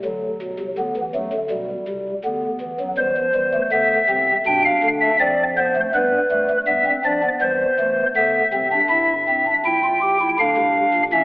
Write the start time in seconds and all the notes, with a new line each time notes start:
0.05 D2 D3 F#3
0.42 B1 B2
0.59 C2 C3
0.78 D2 D3 B3
0.96 E2 E3
1.15 F#2 F#3 A3
1.33 D2 D3
1.50 B1 B2 G3
1.88 C2 C3
2.24 D2 D3 B3
2.61 E2 E3
2.80 F#2 F#3
2.98 E2 E3 G3 C5
3.17 F3
3.35 E2 E3 G3
3.53 A3
3.72 D2 D3 B3 E5
4.09 C2 C3 C4
4.47 B1 B2 D4 G5
4.65 F5
4.83 D2 D3
5.01 E5
5.20 F2 F3 C4 D5
5.57 B3 C5
5.75 A3
5.94 G2 G3 B3 B4
6.31 G3 A3
6.50 A3
6.67 G2 G3 B3 E5
6.86 C4
7.05 F2 F3 D4 D5
7.23 B3
7.41 E2 E3 G3 C5
7.79 E2 E3 A3
8.16 D2 D3 B3 E5
8.53 C2 C3 C4
8.72 D4
8.90 G1 G2 E4 E5
9.28 C4
9.47 D4
9.65 A#1 A#2 E4 G5
9.84 F4
10.02 G4
10.21 E4
10.39 D2 D3 D4 F5
10.57 C2 C3
10.94 A#1 A#2
11.13 A1 A2 C#4 E5